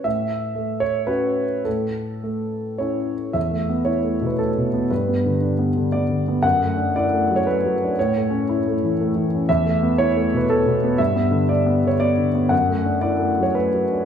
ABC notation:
X:1
M:3/4
L:1/16
Q:1/4=117
K:A
V:1 name="Grand piano"
e6 c2 B4 | A8 c4 | [K:Edor] e4 c3 B A4 | B6 z2 d4 |
f4 d3 c B4 | c6 z6 | e4 c3 B A4 | e4 d3 c d4 |
f4 d3 c B4 |]
V:2 name="Grand piano"
A,,4 A,4 [CF]4 | A,,4 A,4 [CE]4 | [K:Edor] (3E,,2 A,2 B,2 (3E2 A,2 B,,2 (3A,2 B,,2 B,2 | (3G,,2 B,2 D,2 (3D2 B,2 D,2 (3B,2 D,2 B,2 |
(3F,,2 A,2 D2 (3E2 A,2 F,2 (3A,2 F,2 D2 | (3A,,2 A,2 C2 (3E2 A,2 E,2 (3A,2 E,2 C2 | (3E,,2 A,2 B,2 (3E2 A,2 B,,2 (3A,2 B,,2 B,2 | (3G,,2 B,2 D,2 (3D2 B,2 D,2 (3B,2 D,2 B,2 |
(3F,,2 A,2 D2 (3E2 A,2 F,2 (3A,2 F,2 D2 |]